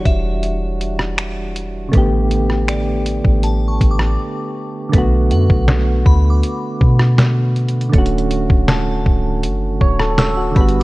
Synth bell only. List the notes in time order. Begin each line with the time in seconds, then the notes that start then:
Already playing: C#5
0.06 E5
2.68 D5
3.44 A5
3.68 C#6
3.91 D6
5.31 F#5
6.06 B5
6.30 D6
8.68 A5
10.19 E6
10.56 B5
10.80 D6